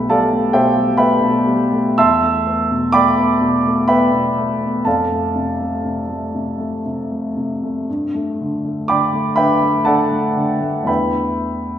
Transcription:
0.00 1.94 B1 soft
0.00 0.22 B2 soft
0.00 0.10 G3 soft
0.00 0.33 A3 soft
0.00 0.98 B4 medium
0.00 0.54 E5 soft
0.00 0.53 G5 medium
0.00 0.97 B5 medium
0.10 0.44 G3 soft
0.10 0.50 A4 medium
0.10 0.50 D5 medium
0.10 0.50 F5 medium
0.10 0.53 A5 medium
0.33 0.67 A3 soft
0.53 0.89 B2 soft
0.53 0.95 G4 medium
0.53 0.95 C5 medium
0.53 0.95 E5 medium
0.53 0.97 G5 medium
0.76 1.12 G3 soft
0.97 1.37 A3 soft
0.97 1.93 B4 medium
0.97 1.93 E5 medium
0.97 1.93 G5 medium
0.97 1.97 B5 medium
1.21 1.62 B2 soft
1.47 1.87 G3 soft
1.72 1.97 A3 soft
1.98 4.82 E2 soft
1.98 2.89 E5 medium
1.98 2.89 A5 medium
1.98 2.89 C6 medium
1.98 2.93 E6 medium
2.23 2.60 A3 soft
2.47 2.84 B3 soft
2.71 3.08 B2 soft
2.92 3.31 A3 soft
2.92 3.85 D5 medium
2.92 3.85 G5 medium
2.92 3.85 B5 medium
2.92 3.88 D6 medium
3.18 3.55 B3 soft
3.41 3.79 B2 soft
3.66 4.03 A3 soft
3.88 4.27 B3 soft
3.88 4.82 B4 medium
3.88 4.81 E5 medium
3.88 4.82 G5 medium
3.88 4.85 B5 medium
4.13 4.51 B2 soft
4.38 4.76 A3 soft
4.61 4.86 B3 soft
4.85 7.84 F2 soft
4.85 6.81 A4 soft
4.85 6.81 D5 soft
4.85 6.81 F5 soft
4.85 6.84 A5 medium
5.12 5.51 A3 soft
5.35 5.75 C3 soft
5.60 6.00 A3 soft
5.84 6.24 C3 soft
6.09 6.49 A3 soft
6.35 6.74 C3 soft
6.58 6.99 A3 soft
6.86 7.26 C3 soft
7.11 7.52 A3 soft
7.37 7.78 C3 soft
7.63 7.88 A3 soft
7.89 10.85 G2 soft
8.14 8.54 A3 soft
8.41 8.79 D3 soft
8.65 9.03 A3 soft
8.88 9.28 D3 soft
8.88 9.34 D5 medium
8.88 9.34 G5 medium
8.88 9.34 B5 medium
8.88 9.37 D6 medium
9.13 9.52 A3 soft
9.36 9.77 D3 soft
9.36 9.83 B4 medium
9.36 9.83 E5 medium
9.36 9.83 G5 medium
9.36 9.86 B5 medium
9.62 10.02 A3 soft
9.85 10.27 D3 soft
9.85 10.84 A4 medium
9.85 10.83 D5 medium
9.85 10.83 F#5 medium
9.85 10.87 A5 medium
10.12 10.52 A3 soft
10.37 10.77 D3 soft
10.61 10.83 A3 soft
10.83 11.79 E2 soft
10.83 11.79 E3 soft
10.83 11.79 A3 soft
10.83 11.79 B3 soft
10.83 11.79 D4 soft
10.83 11.79 B5 medium
10.88 11.79 B4 soft
10.88 11.79 E5 soft
10.88 11.79 G5 soft

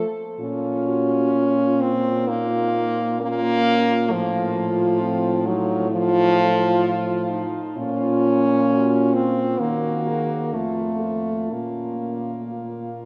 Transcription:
0.00 0.24 A4 medium
0.40 4.13 A#2 medium
0.40 1.82 C#4 medium
0.40 0.88 F4 medium
0.40 2.24 F4 medium
0.87 1.36 F#4 medium
1.34 2.29 F4 medium
1.81 2.29 C4 loud
2.28 3.20 A#3 loud
2.28 3.22 D#4 medium
2.28 3.20 F4 medium
3.20 4.13 A#3 loud
3.20 4.11 C#4 medium
3.20 4.10 F4 medium
4.11 7.60 A2 medium
4.11 5.47 F3 medium
4.11 4.55 F4 medium
4.11 5.88 F4 medium
4.56 5.03 F4 medium
5.02 5.49 C4 medium
5.46 5.90 F#3 medium
5.46 5.94 D#4 medium
5.91 7.45 F3 loud
5.91 7.60 F4 medium
5.91 6.39 F4 medium
6.37 6.82 A4 medium
6.83 7.31 F4 medium
7.30 7.80 D#4 medium
7.77 9.56 A#2 medium
7.77 9.15 C#4 loud
7.77 9.62 F4 medium
7.77 8.42 F4 medium
8.70 9.17 F#4 medium
9.14 9.61 C4 medium
9.14 9.62 F4 medium
9.60 10.56 D#3 medium
9.60 10.55 A#3 medium
9.60 10.57 F#4 medium
9.60 10.09 F#4 medium
10.08 10.55 G#4 medium
10.54 11.52 F2 medium
10.54 11.53 A3 medium
10.54 11.52 F4 medium
10.54 11.03 A4 medium
11.02 11.53 F4 medium
11.51 13.05 A#2 soft
11.51 13.05 A#3 medium
11.51 12.42 C#4 soft
11.51 13.05 F4 soft
12.52 13.05 F4 medium

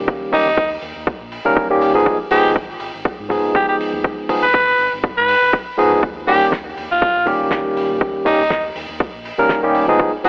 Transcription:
0.00 0.30 D#3 medium
0.00 0.30 G3 medium
0.00 0.30 A#3 medium
0.00 0.30 C#4 medium
0.00 0.31 G4 medium
0.08 kick loud
0.32 0.47 D#3 medium
0.32 0.48 G3 medium
0.32 0.48 A#3 medium
0.32 0.48 C#4 medium
0.32 0.72 D#4 medium
0.32 0.48 G4 medium
0.32 kick medium
0.32 open hi-hat loud
0.46 0.76 D#2 medium
0.57 kick loud
0.71 open hi-hat medium
0.82 0.91 D#2 medium
0.82 open hi-hat medium
0.96 1.11 D#2 medium
1.07 kick loud
1.21 1.36 A#1 medium
1.32 open hi-hat medium
1.45 1.53 C#2 medium
1.45 1.67 D#3 medium
1.45 1.67 G3 medium
1.45 1.67 A#3 medium
1.45 1.67 C#4 medium
1.45 1.67 A#4 medium
1.57 kick loud
1.70 1.92 D#3 medium
1.70 1.92 G3 medium
1.70 1.92 A#3 medium
1.70 1.92 C#4 medium
1.70 1.92 G4 medium
1.81 muted fingered electric bass stroke soft
1.81 open hi-hat medium
1.94 2.02 A#1 loud
1.94 2.17 F3 medium
1.94 2.17 G#3 medium
1.94 2.17 B3 medium
1.94 2.17 D#4 medium
1.94 2.18 G#4 medium
2.06 kick loud
2.31 2.54 F3 medium
2.31 2.54 G#3 medium
2.31 2.54 B3 medium
2.31 2.54 D#4 medium
2.31 2.50 G4 medium
2.31 2.54 G#4 medium
2.31 open hi-hat loud
2.44 2.74 G#1 medium
2.56 kick loud
2.80 2.90 G#1 medium
2.80 open hi-hat loud
2.94 3.05 G#1 medium
3.05 muted fingered electric bass stroke soft
3.05 kick loud
3.19 3.34 G#2 medium
3.29 4.26 F3 medium
3.29 4.26 G#3 medium
3.29 4.27 B3 medium
3.29 4.27 D#4 medium
3.29 4.27 G#4 medium
3.29 kick medium
3.29 open hi-hat medium
3.43 3.51 F1 medium
3.55 3.64 G4 medium
3.55 kick loud
3.69 3.76 G4 medium
3.79 muted fingered electric bass stroke soft
3.79 open hi-hat medium
3.93 4.01 D#2 loud
4.04 kick loud
4.29 4.44 F3 medium
4.29 4.44 G#3 medium
4.29 4.44 B3 medium
4.29 4.45 D#4 medium
4.29 4.45 G#4 medium
4.29 kick medium
4.29 open hi-hat loud
4.43 4.73 G#1 medium
4.43 4.93 B4 medium
4.54 kick loud
4.68 open hi-hat medium
4.78 4.88 G#1 medium
4.78 open hi-hat medium
4.92 5.08 G#1 medium
5.04 kick loud
5.17 5.33 G#2 medium
5.17 5.53 B4 medium
5.28 open hi-hat loud
5.42 5.49 F1 medium
5.53 kick loud
5.77 6.01 F3 medium
5.77 6.01 G#3 medium
5.77 6.01 B3 medium
5.77 6.01 D#4 medium
5.77 6.01 G#4 medium
5.77 muted fingered electric bass stroke soft
5.77 open hi-hat loud
5.92 6.34 D#2 medium
6.03 kick loud
6.27 6.50 D#3 medium
6.27 6.50 G3 medium
6.27 6.50 A#3 medium
6.27 6.51 C#4 medium
6.27 6.46 G4 medium
6.27 6.51 G4 medium
6.27 open hi-hat loud
6.42 6.71 D#2 medium
6.52 kick loud
6.52 snare loud
6.77 6.86 D#2 medium
6.77 open hi-hat loud
6.91 7.01 D#2 medium
6.91 7.27 F4 medium
7.02 muted fingered electric bass stroke soft
7.02 kick loud
7.16 7.31 A#1 medium
7.26 8.23 D#3 medium
7.26 8.23 G3 medium
7.26 8.23 A#3 medium
7.26 8.24 C#4 medium
7.26 8.24 G4 medium
7.26 kick medium
7.26 open hi-hat medium
7.40 7.48 C#2 medium
7.51 kick loud
7.51 snare loud
7.77 muted fingered electric bass stroke soft
7.77 open hi-hat loud
7.90 7.97 A#1 loud
8.01 kick loud
8.25 8.41 D#3 medium
8.25 8.41 G3 medium
8.25 8.41 A#3 medium
8.25 8.41 C#4 medium
8.25 8.65 D#4 medium
8.25 8.41 G4 medium
8.25 kick medium
8.25 open hi-hat loud
8.39 8.69 D#2 medium
8.50 kick loud
8.50 snare loud
8.64 open hi-hat medium
8.75 8.85 D#2 medium
8.75 open hi-hat loud
8.89 9.05 D#2 medium
9.00 kick loud
9.14 9.29 A#1 medium
9.25 open hi-hat loud
9.38 9.46 C#2 medium
9.38 9.60 D#3 medium
9.38 9.60 G3 medium
9.38 9.60 A#3 medium
9.38 9.60 C#4 medium
9.38 9.61 A#4 medium
9.49 kick loud
9.49 snare loud
9.63 9.85 D#3 medium
9.63 9.85 G3 medium
9.63 9.85 A#3 medium
9.63 9.85 C#4 medium
9.63 9.85 G4 medium
9.75 muted fingered electric bass stroke soft
9.75 open hi-hat medium
9.88 9.96 A#1 loud
9.88 10.11 F3 medium
9.88 10.11 G#3 medium
9.88 10.11 B3 medium
9.88 10.11 D#4 medium
9.88 10.11 G#4 medium
9.99 kick loud
10.24 10.29 F3 medium
10.24 10.29 G#3 medium
10.24 10.29 B3 medium
10.24 10.29 D#4 medium
10.24 10.29 G4 medium
10.24 10.29 G#4 medium
10.24 open hi-hat loud

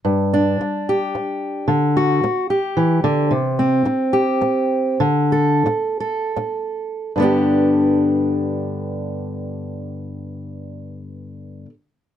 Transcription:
0.05 0.60 G2 medium
0.34 1.66 D4 medium
0.61 muted steel-string acoustic guitar stroke medium
0.89 1.66 G4 medium
1.15 muted steel-string acoustic guitar stroke medium
1.68 2.23 D3 medium
1.97 2.50 F#4 medium
2.24 muted steel-string acoustic guitar stroke medium
2.50 3.28 G4 medium
2.77 3.03 E3 medium
3.04 3.31 D3 medium
3.31 3.85 C3 medium
3.59 4.97 C4 medium
3.85 muted steel-string acoustic guitar stroke medium
4.13 4.97 G4 medium
4.41 muted steel-string acoustic guitar stroke medium
5.00 5.65 D3 medium
5.32 5.99 A4 medium
5.66 muted steel-string acoustic guitar stroke medium
6.00 7.11 A4 soft
6.36 muted steel-string acoustic guitar stroke medium
7.16 11.65 G2 medium
7.16 11.67 D3 soft
7.20 11.69 B3 soft
7.20 11.72 D4 soft
7.20 11.73 G4 soft

